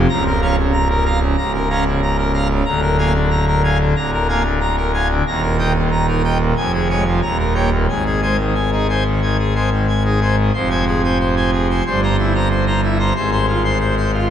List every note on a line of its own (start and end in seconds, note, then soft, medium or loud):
0.09 1.36 C#1 medium
0.09 1.35 C#2 medium
0.09 0.24 A#5 loud
0.26 0.40 A#4 medium
0.42 0.56 C#4 medium
0.42 0.55 F5 medium
0.42 0.56 A#5 medium
0.58 0.72 C#3 medium
0.73 0.88 A#5 medium
0.90 1.04 A#4 medium
1.05 1.19 F5 medium
1.05 1.19 A#5 medium
1.21 1.36 C#3 medium
1.37 2.62 C#1 medium
1.37 2.62 C#2 medium
1.37 1.52 A#5 medium
1.54 1.68 A#4 medium
1.70 1.84 C#4 medium
1.70 1.84 F5 medium
1.70 1.84 A#5 medium
1.86 2.00 C#3 medium
2.03 2.17 A#5 medium
2.18 2.32 A#4 medium
2.34 2.48 F5 medium
2.34 2.48 A#5 medium
2.50 2.64 C#3 medium
2.66 3.94 D1 medium
2.66 3.94 D2 medium
2.66 2.80 A#5 loud
2.82 2.97 A#4 medium
2.98 3.13 A#3 medium
2.98 3.13 F5 medium
2.98 3.12 G#5 medium
3.15 3.29 D3 medium
3.31 3.45 A#5 medium
3.48 3.62 A#4 medium
3.64 3.78 F5 medium
3.64 3.78 G#5 medium
3.80 3.95 D3 medium
3.96 5.22 D1 medium
3.96 5.22 D2 medium
3.96 4.11 A#5 medium
4.13 4.27 A#4 medium
4.29 4.43 A#3 medium
4.29 4.43 F5 medium
4.29 4.43 G#5 medium
4.45 4.59 D3 medium
4.61 4.76 A#5 medium
4.77 4.92 A#4 medium
4.94 5.08 F5 medium
4.94 5.08 G#5 medium
5.10 5.24 D3 medium
5.27 6.53 D#1 medium
5.27 6.53 D#2 medium
5.27 5.41 A#5 loud
5.42 5.57 A#4 medium
5.59 5.73 A#3 medium
5.59 5.73 D#5 medium
5.59 5.73 G5 medium
5.76 5.90 A#2 medium
5.92 6.06 A#5 medium
6.08 6.22 D#4 medium
6.08 6.22 A#4 medium
6.24 6.38 D#5 medium
6.24 6.38 G5 medium
6.40 6.54 A#2 medium
6.57 7.21 F1 medium
6.57 7.21 F2 medium
6.57 6.72 G#5 medium
6.74 6.88 G#4 medium
6.90 7.05 G#3 medium
6.90 7.04 C#5 medium
6.90 7.04 G#5 medium
7.06 7.20 F3 medium
7.22 7.87 D#1 medium
7.22 7.87 D#2 medium
7.22 7.37 A#5 medium
7.39 7.54 A#4 medium
7.55 7.70 A#3 medium
7.55 7.69 C#5 medium
7.55 7.69 G5 medium
7.72 7.86 A#2 medium
7.89 10.51 G#1 medium
7.89 10.51 G#2 medium
7.89 8.04 G#5 medium
8.06 8.21 G#4 medium
8.22 8.37 G#3 medium
8.22 8.37 C5 medium
8.22 8.37 G#5 medium
8.39 8.54 D#3 medium
8.55 8.70 G#5 medium
8.72 8.87 D#4 medium
8.72 8.87 G#4 medium
8.89 9.03 C5 medium
8.89 9.03 G#5 medium
9.06 9.20 D#3 medium
9.22 9.37 D#3 medium
9.22 9.37 G#5 medium
9.39 9.54 G#4 medium
9.55 9.70 G#3 medium
9.55 9.69 C5 medium
9.55 9.69 G#5 medium
9.71 9.86 D#3 medium
9.88 10.03 G#5 medium
10.04 10.20 D#4 medium
10.04 10.20 G#4 medium
10.21 10.36 C5 medium
10.21 10.36 G#5 medium
10.38 10.52 D#3 medium
10.54 11.81 F1 medium
10.54 11.81 F2 medium
10.54 10.69 C5 medium
10.70 10.85 C5 medium
10.70 10.85 G#5 medium
10.87 11.02 G#4 medium
11.04 11.18 C5 medium
11.04 11.18 G#5 medium
11.20 11.35 C5 medium
11.37 11.50 C5 medium
11.37 11.50 G#5 medium
11.53 11.67 G#4 medium
11.70 11.83 C5 medium
11.70 11.84 G#5 medium
11.86 13.12 G1 medium
11.86 13.12 G2 medium
11.86 12.00 C5 medium
12.03 12.16 C5 medium
12.03 12.16 A#5 medium
12.19 12.33 E4 medium
12.34 12.48 C5 medium
12.34 12.48 A#5 medium
12.50 12.65 C5 medium
12.67 12.81 C5 medium
12.67 12.81 A#5 medium
12.83 12.98 E4 medium
12.99 13.13 C5 medium
12.99 13.13 A#5 medium
13.16 14.30 G#1 medium
13.16 14.30 G#2 medium
13.16 13.30 C5 medium
13.32 13.46 C5 medium
13.32 13.46 C6 medium
13.48 13.63 F4 medium
13.64 13.78 C5 medium
13.64 13.78 C6 medium
13.80 13.95 C5 medium
13.97 14.11 C5 medium
13.97 14.11 C6 medium
14.13 14.28 F4 medium